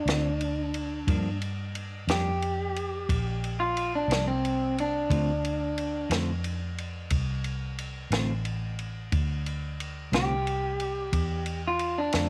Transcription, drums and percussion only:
0.08 snare, ride
0.41 ride
0.74 ride
1.08 kick, ride
1.42 ride
1.75 ride
2.09 snare, ride
2.42 ride
2.76 ride
3.09 kick, ride
3.44 ride
3.77 ride
4.11 snare, ride
4.45 ride
4.78 ride
5.11 kick, ride
5.45 ride
5.78 ride
6.11 snare, ride
6.44 ride
6.78 ride
7.10 kick, ride
7.44 ride
7.78 ride
8.12 snare, ride
8.45 ride
8.79 ride
9.12 kick, ride
9.46 ride
9.80 ride
10.13 snare, ride
10.47 ride
10.80 ride
11.13 kick, ride
11.46 ride
11.79 ride
12.12 snare, ride

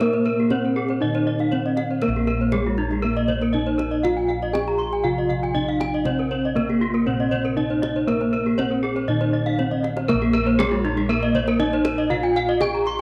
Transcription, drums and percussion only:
0.01 kendang low
0.13 kendang slap
0.25 kendang slap
0.50 kendang slap, kendang high, kendang low
0.76 kendang slap
0.88 kendang slap
1.14 kendang slap
1.39 kendang slap
1.52 kendang slap, kendang low
1.77 kendang high
2.02 kendang low
2.27 kendang slap
2.52 kendang high, kendang low
2.77 kendang slap
2.91 kendang slap
3.28 kendang low
3.41 kendang slap
3.54 kendang low
3.79 kendang high
4.05 kendang low
4.30 kendang slap
4.55 kendang high, kendang low
4.80 kendang slap
4.93 kendang slap
5.30 kendang low
5.44 kendang slap
5.56 kendang low
5.81 kendang high
6.05 kendang high, kendang low
6.31 kendang slap
6.57 kendang high, kendang low
6.82 kendang slap
7.32 kendang low
7.45 kendang slap
7.57 kendang low
7.83 kendang high
8.08 kendang high, kendang low
8.21 kendang slap
8.34 kendang slap
8.59 kendang slap, kendang high, kendang low
8.84 kendang slap
8.96 kendang slap
9.21 kendang slap
9.46 kendang slap
9.59 kendang slap, kendang low
9.71 kendang low
9.84 kendang high
9.97 kendang high
10.09 kendang low
10.35 kendang slap
10.60 kendang high, kendang low
10.85 kendang slap
10.97 kendang slap
11.35 kendang low
11.47 kendang slap
11.60 kendang low
11.85 kendang high
12.11 kendang low
12.36 kendang slap
12.61 kendang high, kendang low
12.86 kendang slap

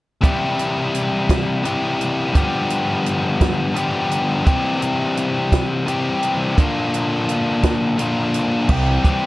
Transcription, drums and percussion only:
0.23 kick, closed hi-hat
0.59 closed hi-hat
0.95 closed hi-hat
1.29 kick, snare, closed hi-hat
1.65 closed hi-hat
2.01 closed hi-hat
2.35 kick, closed hi-hat
2.70 closed hi-hat
3.06 closed hi-hat
3.41 kick, snare, closed hi-hat
3.76 closed hi-hat
4.11 closed hi-hat
4.47 kick, closed hi-hat
4.82 closed hi-hat
5.17 closed hi-hat
5.52 kick, snare, closed hi-hat
5.88 closed hi-hat
6.23 closed hi-hat
6.58 kick, closed hi-hat
6.94 closed hi-hat
7.29 closed hi-hat
7.63 kick, snare, closed hi-hat
7.99 closed hi-hat
8.34 closed hi-hat
8.69 kick, crash
9.05 kick, closed hi-hat

